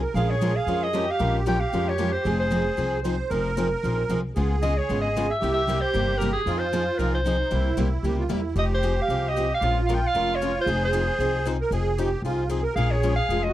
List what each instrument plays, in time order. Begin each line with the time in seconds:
0.02 accordion A#4
0.14 upright bass A#1, steel-string acoustic guitar F3 G#3 C#4 F4 A#4, accordion G#4, clarinet F5
0.30 clarinet C#5
0.41 steel-string acoustic guitar F3 G#3 C#4 F4 A#4
0.56 clarinet F5
0.66 upright bass F2, steel-string acoustic guitar F3 G#3 C#4 F4 A#4
0.83 clarinet D#5
0.93 steel-string acoustic guitar F3 G#3 C#4 F4 A#4, accordion G4
1.10 clarinet F5
1.19 upright bass A#1, steel-string acoustic guitar F3 G#3 C#4 F4 A#4
1.46 steel-string acoustic guitar F3 G#3 C#4 F4 A#4, clarinet G5
1.60 clarinet F5
1.73 upright bass F2, steel-string acoustic guitar F3 G#3 C#4 F4 A#4
1.89 clarinet C#5
1.98 steel-string acoustic guitar F3 G#3 C#4 F4 A#4
2.12 clarinet C5
2.25 upright bass F1, steel-string acoustic guitar F3 C4 D#4 G#4, accordion G#4
2.39 clarinet C5
2.51 steel-string acoustic guitar F3 C4 D#4 G#4
2.77 upright bass C2, steel-string acoustic guitar F3 C4 D#4 G#4
3.03 steel-string acoustic guitar F3 C4 D#4 G#4, accordion C5
3.30 upright bass F1, steel-string acoustic guitar F3 C4 D#4 G#4, accordion A#4
3.57 steel-string acoustic guitar F3 C4 D#4 G#4
3.84 upright bass A#1, steel-string acoustic guitar F3 C4 D#4 G#4
4.09 upright bass C2, steel-string acoustic guitar F3 C4 D#4 G#4
4.36 upright bass C#2, steel-string acoustic guitar C#3 G#3 B3 F4 G#4, accordion G#4
4.62 steel-string acoustic guitar C#3 G#3 B3 F4 G#4, clarinet D#5
4.77 clarinet C#5
4.89 upright bass G#1, steel-string acoustic guitar C#3 G#3 B3 F4 G#4
5.01 clarinet D#5
5.17 steel-string acoustic guitar C#3 G#3 B3 F4 G#4
5.30 clarinet E5
5.40 upright bass C2, steel-string acoustic guitar C3 G3 A#3 E4 G4, accordion G4
5.54 clarinet E5
5.68 steel-string acoustic guitar C3 G3 A#3 E4 G4
5.81 clarinet C5
5.94 upright bass G1, steel-string acoustic guitar C3 G3 A#3 E4 G4
6.18 steel-string acoustic guitar C3 G3, clarinet A#4
6.22 steel-string acoustic guitar A#3 E4 G4
6.32 clarinet G#4
6.46 upright bass F2, steel-string acoustic guitar F3 C4 D#4 G#4, accordion F4
6.59 clarinet C5
6.73 steel-string acoustic guitar F3 C4 D#4 G#4
6.98 upright bass C2, steel-string acoustic guitar F3 C4 D#4 G#4, clarinet A#4
7.14 clarinet C5
7.25 steel-string acoustic guitar F3 C4 D#4 G#4, accordion D#4
7.51 upright bass C2, steel-string acoustic guitar C3 G3 A#3 E4 G4, accordion E4
7.77 upright bass C2, steel-string acoustic guitar C3 G3 A#3 E4 G4
8.03 upright bass C#2, steel-string acoustic guitar C3 G3 A#3 E4 G4, accordion G4
8.19 accordion F4
8.29 upright bass E2, steel-string acoustic guitar C3 G3 A#3 E4 G4, accordion E4
8.56 upright bass F1, steel-string acoustic guitar F3 C4 D#4 G#4, accordion G4, clarinet D#5
8.74 clarinet C5
8.83 steel-string acoustic guitar F3 C4 D#4 G#4
9.01 clarinet F5
9.08 upright bass C2, steel-string acoustic guitar F3 C4 D#4 G#4
9.28 clarinet D#5
9.36 steel-string acoustic guitar F3 C4 D#4 G#4
9.54 clarinet F5
9.61 upright bass A#1, steel-string acoustic guitar F3 G#3 C#4 F4 A#4, accordion F4
9.86 steel-string acoustic guitar F3 G#3 C#4 F4 A#4, clarinet F5
9.94 clarinet G5
10.07 clarinet F5
10.15 upright bass F1, steel-string acoustic guitar F3 G#3 C#4 F4 A#4
10.35 clarinet C#5
10.41 steel-string acoustic guitar F3 G#3 C#4 F4 A#4
10.61 clarinet C5
10.66 upright bass F1, steel-string acoustic guitar F3 C4 D#4 G#4, accordion G#4
10.85 clarinet C5
10.93 steel-string acoustic guitar F3 C4 D#4 G#4
11.19 upright bass C2, steel-string acoustic guitar F3 C4 D#4 G#4
11.45 steel-string acoustic guitar F3 C4 D#4 G#4, accordion C5
11.61 accordion A#4
11.71 upright bass F1, steel-string acoustic guitar F3 C4 D#4 G#4, accordion G#4
11.98 steel-string acoustic guitar F3 C4 D#4 G#4, accordion G4
12.22 upright bass C2, steel-string acoustic guitar F3 C4 D#4 G#4, accordion F4
12.49 steel-string acoustic guitar F3 C4 D#4 G#4, accordion G#4
12.63 accordion A#4
12.75 upright bass A#1, steel-string acoustic guitar F3 G#3 C#4 F4 A#4, accordion G#4, clarinet F5
12.91 clarinet C#5
13.03 steel-string acoustic guitar F3 G#3 C#4 F4 A#4
13.15 clarinet F5
13.29 upright bass F1, steel-string acoustic guitar F3 G#3 C#4 F4 A#4
13.43 clarinet D#5
13.48 accordion F#4